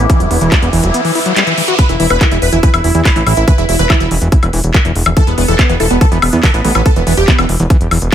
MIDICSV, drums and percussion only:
0, 0, Header, 1, 2, 480
1, 0, Start_track
1, 0, Tempo, 422535
1, 109, Time_signature, 4, 2, 24, 8
1, 9257, End_track
2, 0, Start_track
2, 0, Title_t, "Drums"
2, 109, Note_on_c, 9, 36, 112
2, 109, Note_on_c, 9, 42, 97
2, 223, Note_off_c, 9, 36, 0
2, 223, Note_off_c, 9, 42, 0
2, 229, Note_on_c, 9, 42, 53
2, 343, Note_off_c, 9, 42, 0
2, 349, Note_on_c, 9, 46, 98
2, 463, Note_off_c, 9, 46, 0
2, 469, Note_on_c, 9, 42, 58
2, 583, Note_off_c, 9, 42, 0
2, 589, Note_on_c, 9, 36, 113
2, 589, Note_on_c, 9, 39, 122
2, 589, Note_on_c, 9, 42, 92
2, 703, Note_off_c, 9, 36, 0
2, 703, Note_off_c, 9, 39, 0
2, 703, Note_off_c, 9, 42, 0
2, 709, Note_on_c, 9, 42, 55
2, 823, Note_off_c, 9, 42, 0
2, 829, Note_on_c, 9, 46, 103
2, 943, Note_off_c, 9, 46, 0
2, 949, Note_on_c, 9, 42, 58
2, 1063, Note_off_c, 9, 42, 0
2, 1069, Note_on_c, 9, 42, 94
2, 1183, Note_off_c, 9, 42, 0
2, 1190, Note_on_c, 9, 46, 62
2, 1303, Note_off_c, 9, 46, 0
2, 1309, Note_on_c, 9, 46, 105
2, 1423, Note_off_c, 9, 46, 0
2, 1429, Note_on_c, 9, 42, 56
2, 1543, Note_off_c, 9, 42, 0
2, 1550, Note_on_c, 9, 39, 123
2, 1550, Note_on_c, 9, 42, 98
2, 1663, Note_off_c, 9, 39, 0
2, 1663, Note_off_c, 9, 42, 0
2, 1670, Note_on_c, 9, 42, 54
2, 1783, Note_off_c, 9, 42, 0
2, 1789, Note_on_c, 9, 46, 106
2, 1903, Note_off_c, 9, 46, 0
2, 1910, Note_on_c, 9, 42, 54
2, 2023, Note_off_c, 9, 42, 0
2, 2029, Note_on_c, 9, 36, 120
2, 2030, Note_on_c, 9, 42, 97
2, 2143, Note_off_c, 9, 36, 0
2, 2143, Note_off_c, 9, 42, 0
2, 2150, Note_on_c, 9, 42, 51
2, 2263, Note_off_c, 9, 42, 0
2, 2270, Note_on_c, 9, 46, 108
2, 2383, Note_off_c, 9, 46, 0
2, 2390, Note_on_c, 9, 42, 57
2, 2390, Note_on_c, 9, 76, 40
2, 2503, Note_off_c, 9, 42, 0
2, 2503, Note_off_c, 9, 76, 0
2, 2509, Note_on_c, 9, 36, 120
2, 2509, Note_on_c, 9, 39, 124
2, 2509, Note_on_c, 9, 42, 94
2, 2623, Note_off_c, 9, 36, 0
2, 2623, Note_off_c, 9, 39, 0
2, 2623, Note_off_c, 9, 42, 0
2, 2629, Note_on_c, 9, 42, 53
2, 2743, Note_off_c, 9, 42, 0
2, 2749, Note_on_c, 9, 46, 107
2, 2863, Note_off_c, 9, 46, 0
2, 2869, Note_on_c, 9, 42, 55
2, 2983, Note_off_c, 9, 42, 0
2, 2989, Note_on_c, 9, 36, 123
2, 2989, Note_on_c, 9, 42, 99
2, 3103, Note_off_c, 9, 36, 0
2, 3103, Note_off_c, 9, 42, 0
2, 3109, Note_on_c, 9, 42, 59
2, 3109, Note_on_c, 9, 76, 77
2, 3223, Note_off_c, 9, 42, 0
2, 3223, Note_off_c, 9, 76, 0
2, 3229, Note_on_c, 9, 46, 109
2, 3343, Note_off_c, 9, 46, 0
2, 3349, Note_on_c, 9, 42, 55
2, 3463, Note_off_c, 9, 42, 0
2, 3469, Note_on_c, 9, 36, 115
2, 3469, Note_on_c, 9, 39, 125
2, 3469, Note_on_c, 9, 42, 98
2, 3583, Note_off_c, 9, 36, 0
2, 3583, Note_off_c, 9, 39, 0
2, 3583, Note_off_c, 9, 42, 0
2, 3589, Note_on_c, 9, 42, 57
2, 3703, Note_off_c, 9, 42, 0
2, 3709, Note_on_c, 9, 46, 112
2, 3709, Note_on_c, 9, 76, 38
2, 3823, Note_off_c, 9, 46, 0
2, 3823, Note_off_c, 9, 76, 0
2, 3829, Note_on_c, 9, 42, 56
2, 3943, Note_off_c, 9, 42, 0
2, 3949, Note_on_c, 9, 36, 118
2, 3949, Note_on_c, 9, 42, 98
2, 4063, Note_off_c, 9, 36, 0
2, 4063, Note_off_c, 9, 42, 0
2, 4069, Note_on_c, 9, 42, 53
2, 4183, Note_off_c, 9, 42, 0
2, 4189, Note_on_c, 9, 46, 115
2, 4303, Note_off_c, 9, 46, 0
2, 4309, Note_on_c, 9, 42, 57
2, 4423, Note_off_c, 9, 42, 0
2, 4429, Note_on_c, 9, 36, 122
2, 4429, Note_on_c, 9, 39, 126
2, 4429, Note_on_c, 9, 42, 94
2, 4429, Note_on_c, 9, 76, 75
2, 4543, Note_off_c, 9, 36, 0
2, 4543, Note_off_c, 9, 39, 0
2, 4543, Note_off_c, 9, 42, 0
2, 4543, Note_off_c, 9, 76, 0
2, 4549, Note_on_c, 9, 42, 53
2, 4663, Note_off_c, 9, 42, 0
2, 4669, Note_on_c, 9, 46, 110
2, 4783, Note_off_c, 9, 46, 0
2, 4789, Note_on_c, 9, 42, 57
2, 4903, Note_off_c, 9, 42, 0
2, 4909, Note_on_c, 9, 36, 122
2, 4909, Note_on_c, 9, 42, 96
2, 5023, Note_off_c, 9, 36, 0
2, 5023, Note_off_c, 9, 42, 0
2, 5029, Note_on_c, 9, 42, 57
2, 5029, Note_on_c, 9, 76, 40
2, 5143, Note_off_c, 9, 42, 0
2, 5143, Note_off_c, 9, 76, 0
2, 5149, Note_on_c, 9, 46, 111
2, 5262, Note_off_c, 9, 46, 0
2, 5269, Note_on_c, 9, 42, 56
2, 5383, Note_off_c, 9, 42, 0
2, 5389, Note_on_c, 9, 36, 121
2, 5389, Note_on_c, 9, 39, 127
2, 5389, Note_on_c, 9, 42, 94
2, 5502, Note_off_c, 9, 39, 0
2, 5502, Note_off_c, 9, 42, 0
2, 5503, Note_off_c, 9, 36, 0
2, 5509, Note_on_c, 9, 42, 54
2, 5623, Note_off_c, 9, 42, 0
2, 5629, Note_on_c, 9, 46, 109
2, 5742, Note_off_c, 9, 46, 0
2, 5749, Note_on_c, 9, 42, 53
2, 5749, Note_on_c, 9, 76, 78
2, 5863, Note_off_c, 9, 42, 0
2, 5863, Note_off_c, 9, 76, 0
2, 5869, Note_on_c, 9, 36, 127
2, 5869, Note_on_c, 9, 42, 92
2, 5982, Note_off_c, 9, 42, 0
2, 5983, Note_off_c, 9, 36, 0
2, 5989, Note_on_c, 9, 42, 52
2, 6103, Note_off_c, 9, 42, 0
2, 6109, Note_on_c, 9, 46, 114
2, 6222, Note_off_c, 9, 46, 0
2, 6229, Note_on_c, 9, 42, 53
2, 6343, Note_off_c, 9, 42, 0
2, 6349, Note_on_c, 9, 36, 120
2, 6349, Note_on_c, 9, 39, 121
2, 6349, Note_on_c, 9, 42, 88
2, 6349, Note_on_c, 9, 76, 36
2, 6462, Note_off_c, 9, 39, 0
2, 6462, Note_off_c, 9, 42, 0
2, 6462, Note_off_c, 9, 76, 0
2, 6463, Note_off_c, 9, 36, 0
2, 6469, Note_on_c, 9, 42, 50
2, 6583, Note_off_c, 9, 42, 0
2, 6589, Note_on_c, 9, 46, 110
2, 6702, Note_off_c, 9, 46, 0
2, 6709, Note_on_c, 9, 42, 53
2, 6823, Note_off_c, 9, 42, 0
2, 6829, Note_on_c, 9, 36, 127
2, 6829, Note_on_c, 9, 42, 93
2, 6943, Note_off_c, 9, 36, 0
2, 6943, Note_off_c, 9, 42, 0
2, 6949, Note_on_c, 9, 42, 54
2, 7063, Note_off_c, 9, 42, 0
2, 7069, Note_on_c, 9, 46, 112
2, 7069, Note_on_c, 9, 76, 78
2, 7183, Note_off_c, 9, 46, 0
2, 7183, Note_off_c, 9, 76, 0
2, 7189, Note_on_c, 9, 42, 53
2, 7303, Note_off_c, 9, 42, 0
2, 7309, Note_on_c, 9, 36, 125
2, 7309, Note_on_c, 9, 39, 124
2, 7309, Note_on_c, 9, 42, 92
2, 7423, Note_off_c, 9, 36, 0
2, 7423, Note_off_c, 9, 39, 0
2, 7423, Note_off_c, 9, 42, 0
2, 7429, Note_on_c, 9, 42, 53
2, 7543, Note_off_c, 9, 42, 0
2, 7549, Note_on_c, 9, 46, 114
2, 7663, Note_off_c, 9, 46, 0
2, 7669, Note_on_c, 9, 42, 50
2, 7669, Note_on_c, 9, 76, 41
2, 7783, Note_off_c, 9, 42, 0
2, 7783, Note_off_c, 9, 76, 0
2, 7789, Note_on_c, 9, 36, 119
2, 7789, Note_on_c, 9, 42, 91
2, 7903, Note_off_c, 9, 36, 0
2, 7903, Note_off_c, 9, 42, 0
2, 7909, Note_on_c, 9, 42, 49
2, 8023, Note_off_c, 9, 42, 0
2, 8029, Note_on_c, 9, 46, 106
2, 8143, Note_off_c, 9, 46, 0
2, 8149, Note_on_c, 9, 42, 51
2, 8263, Note_off_c, 9, 42, 0
2, 8269, Note_on_c, 9, 36, 123
2, 8269, Note_on_c, 9, 39, 113
2, 8269, Note_on_c, 9, 42, 84
2, 8383, Note_off_c, 9, 36, 0
2, 8383, Note_off_c, 9, 39, 0
2, 8383, Note_off_c, 9, 42, 0
2, 8389, Note_on_c, 9, 42, 49
2, 8389, Note_on_c, 9, 76, 80
2, 8503, Note_off_c, 9, 42, 0
2, 8503, Note_off_c, 9, 76, 0
2, 8509, Note_on_c, 9, 46, 113
2, 8623, Note_off_c, 9, 46, 0
2, 8629, Note_on_c, 9, 42, 51
2, 8743, Note_off_c, 9, 42, 0
2, 8749, Note_on_c, 9, 36, 121
2, 8749, Note_on_c, 9, 42, 90
2, 8863, Note_off_c, 9, 36, 0
2, 8863, Note_off_c, 9, 42, 0
2, 8869, Note_on_c, 9, 42, 54
2, 8983, Note_off_c, 9, 42, 0
2, 8989, Note_on_c, 9, 46, 110
2, 8989, Note_on_c, 9, 76, 42
2, 9103, Note_off_c, 9, 46, 0
2, 9103, Note_off_c, 9, 76, 0
2, 9109, Note_on_c, 9, 42, 51
2, 9223, Note_off_c, 9, 42, 0
2, 9257, End_track
0, 0, End_of_file